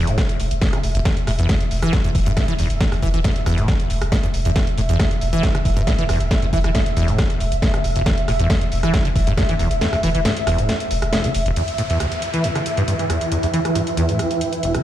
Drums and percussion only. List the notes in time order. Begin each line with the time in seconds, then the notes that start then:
0.07 closed hi-hat
0.18 kick, cross-stick, snare, closed hi-hat
0.29 closed hi-hat
0.40 open hi-hat
0.51 closed hi-hat
0.61 kick, snare, closed hi-hat
0.73 cross-stick, closed hi-hat
0.83 open hi-hat
0.95 closed hi-hat
1.05 kick, snare, closed hi-hat
1.17 closed hi-hat
1.27 cross-stick, open hi-hat
1.39 closed hi-hat
1.49 kick, snare, closed hi-hat
1.61 closed hi-hat
1.71 open hi-hat
1.82 cross-stick, closed hi-hat
1.93 kick, snare, closed hi-hat
2.04 closed hi-hat
2.15 kick, open hi-hat
2.26 closed hi-hat
2.37 kick, cross-stick, snare, closed hi-hat
2.48 closed hi-hat
2.59 open hi-hat
2.70 closed hi-hat
2.81 kick, snare, closed hi-hat
2.92 cross-stick, open hi-hat
3.02 kick, open hi-hat
3.14 closed hi-hat
3.24 kick, snare, closed hi-hat
3.36 closed hi-hat
3.46 cross-stick, open hi-hat
3.58 closed hi-hat
3.68 kick, snare, closed hi-hat
3.80 closed hi-hat
3.90 open hi-hat
4.02 cross-stick, closed hi-hat
4.12 kick, snare, closed hi-hat
4.23 closed hi-hat
4.34 open hi-hat
4.45 closed hi-hat
4.56 kick, snare, closed hi-hat
4.67 closed hi-hat
4.78 open hi-hat
4.89 closed hi-hat
4.99 kick, cross-stick, snare, closed hi-hat
5.11 closed hi-hat
5.21 open hi-hat
5.33 closed hi-hat
5.43 kick, snare, closed hi-hat
5.55 cross-stick, closed hi-hat
5.65 kick, open hi-hat
5.77 closed hi-hat
5.87 kick, snare, closed hi-hat
5.99 closed hi-hat
6.09 cross-stick, open hi-hat
6.20 closed hi-hat
6.31 kick, snare, closed hi-hat
6.42 closed hi-hat
6.53 kick, open hi-hat
6.64 cross-stick, closed hi-hat
6.75 kick, snare, closed hi-hat
6.86 closed hi-hat
6.97 open hi-hat
7.08 closed hi-hat
7.18 kick, cross-stick, snare, closed hi-hat
7.30 closed hi-hat
7.40 open hi-hat
7.52 closed hi-hat
7.62 kick, snare, closed hi-hat
7.74 cross-stick, closed hi-hat
7.84 open hi-hat
7.96 closed hi-hat
8.06 kick, snare, closed hi-hat
8.18 closed hi-hat
8.28 cross-stick, open hi-hat
8.39 closed hi-hat
8.50 kick, snare, closed hi-hat
8.61 closed hi-hat
8.72 open hi-hat
8.83 cross-stick, closed hi-hat
8.94 kick, snare, closed hi-hat
9.05 closed hi-hat
9.16 kick, open hi-hat
9.27 closed hi-hat
9.37 kick, cross-stick, snare, closed hi-hat
9.49 closed hi-hat
9.59 open hi-hat
9.71 closed hi-hat
9.81 snare, closed hi-hat
9.93 cross-stick, open hi-hat
10.03 open hi-hat
10.15 closed hi-hat
10.25 snare, closed hi-hat
10.37 closed hi-hat
10.47 cross-stick, open hi-hat
10.58 closed hi-hat
10.69 snare, closed hi-hat
10.80 closed hi-hat
10.91 open hi-hat
11.02 cross-stick, closed hi-hat
11.13 snare, closed hi-hat
11.24 closed hi-hat
11.35 open hi-hat
11.46 closed hi-hat
11.56 closed hi-hat
11.68 closed hi-hat
11.78 closed hi-hat
11.90 closed hi-hat
12.00 cross-stick, closed hi-hat
12.12 closed hi-hat
12.22 closed hi-hat
12.34 closed hi-hat
12.44 closed hi-hat
12.56 cross-stick, closed hi-hat
12.66 closed hi-hat
12.77 closed hi-hat
12.88 closed hi-hat
12.99 closed hi-hat
13.10 cross-stick, closed hi-hat
13.21 closed hi-hat
13.32 closed hi-hat
13.43 closed hi-hat
13.54 closed hi-hat
13.65 cross-stick, closed hi-hat
13.75 closed hi-hat
13.87 closed hi-hat
13.97 closed hi-hat
14.09 closed hi-hat
14.19 cross-stick, closed hi-hat
14.31 closed hi-hat
14.41 closed hi-hat
14.53 closed hi-hat
14.63 closed hi-hat
14.75 cross-stick, closed hi-hat